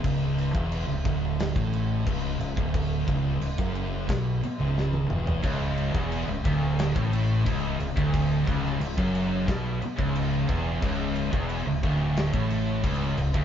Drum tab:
CC |x-x-x-x-x-x-x-x-|x-x-x-x-x-x-----|x-x-x-x-x-x-x-x-|x-x-x-x-x-x-x-x-|
SD |--------o-------|--------o---o---|---o----o-------|---o----o-------|
T1 |----------------|-------------o--|----------------|----------------|
T2 |----------------|--------------o-|----------------|----------------|
FT |----------------|---------------o|----------------|----------------|
BD |o--o--o--o--o--o|o-o--o--o-------|o--o--o--o--o--o|o-o--o--o--o--o-|

CC |x-x-x-x-x-x-x-x-|
SD |--------o-------|
T1 |----------------|
T2 |----------------|
FT |----------------|
BD |o--o--o--o--o--o|